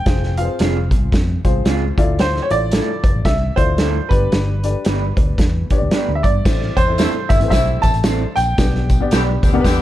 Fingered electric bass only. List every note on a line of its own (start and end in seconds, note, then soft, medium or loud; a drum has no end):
0.06 0.47 F1 medium
0.60 0.93 F1 medium
0.91 1.07 C2 medium
1.13 1.37 F2 medium
1.45 1.61 C2 medium
1.66 1.90 C#2 medium
1.98 2.39 D2 medium
2.51 2.80 A1 medium
3.03 3.12 F1 medium
3.14 3.23 A1 medium
3.25 3.50 C2 medium
3.58 3.98 D2 medium
4.11 4.27 G1 medium
4.33 4.74 G1 medium
4.86 5.10 G1 medium
5.17 5.33 D2 medium
5.38 5.63 E2 medium
5.71 muted fingered electric bass stroke soft
5.82 5.90 D2 medium
5.93 muted fingered electric bass stroke soft
6.09 6.21 D2 medium
6.24 6.41 G2 medium
6.46 6.70 A1 loud
6.77 7.06 E2 medium
7.30 7.39 G1 medium
7.41 7.49 A1 medium
7.51 7.76 B1 medium
7.83 8.24 A1 medium
8.37 8.54 A#1 medium
8.58 8.99 B1 medium
9.12 9.36 B1 loud
9.43 9.60 D2 medium
9.65 9.82 E2 medium